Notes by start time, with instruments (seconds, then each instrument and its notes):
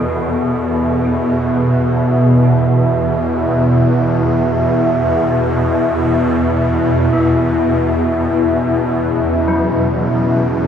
Already playing: synth drone E2 B2, ambient pad B3 E4 E5, bronze metallophone F#4 A4
7.13 bronze metallophone B3
7.61 ambient pad C#4
9.48 bronze metallophone F#3
10.48 ambient pad A4